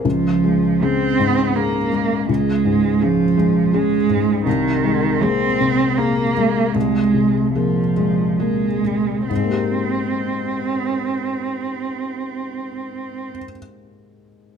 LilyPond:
<<
  \new Staff \with { instrumentName = "Cello" } { \clef bass \time 3/4 \key aes \major \tempo 4 = 76 f4 c'4 bes4 | aes4 f4 aes4 | ees4 c'4 bes4 | aes4 f4 aes4 |
c'2.~ | c'2. | }
  \new Staff \with { instrumentName = "Felt piano" } { \clef bass \time 3/4 \key aes \major des,8 aes8 <des aes'>8 aes,8 <des' aes'>8 aes8 | des,8 aes,8 <des' aes'>8 aes8 <des' aes'>8 aes,8 | c,8 aes8 <bes aes'>8 c8 <bes aes'>8 aes8 | c,8 c8 <bes aes'>8 aes8 <bes aes'>8 c8 |
<aes, aes bes g' bes'>2.~ | <aes, aes bes g' bes'>2. | }
>>